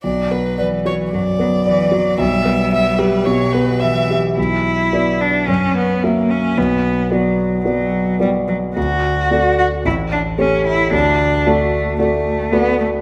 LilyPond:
<<
  \new Staff \with { instrumentName = "Violin" } { \time 4/4 \key b \minor \tempo 4 = 111 d''8 b'8 b'8 cis''8 d''2 | e''4 e''8 b'8 cis''8 b'8 e''8 r8 | r1 | r1 |
r1 | r1 | }
  \new Staff \with { instrumentName = "Grand piano" } { \time 4/4 \key b \minor b,,8 b8 d''8 fis'8 fis,8 b8 d''8 fis'8 | b,,8 b8 e''8 g'8 b,8 b8 e''8 g'8 | b,,4 <b fis' d''>4 fis,4 <ais fis' e''>4 | b,,4 <b fis' d''>4 <b fis' d''>4 <b fis' d''>4 |
d,4 <a fis' d''>4 a,,4 <a g' cis''>4 | d,4 <a fis' d''>4 <a fis' d''>4 <a fis' d''>4 | }
  \new Staff \with { instrumentName = "Cello" } { \time 4/4 \key b \minor fis4 e4 fis8 fis8 e8 fis8 | g2 fis4 e8 r8 | e'4. d'8 cis'8 b8 ais8 cis'8 | b4 fis4 fis4 g8 fis8 |
fis'4. fis'8 e'8 d'8 cis'8 e'8 | d'4 a4 a4 b8 a8 | }
>>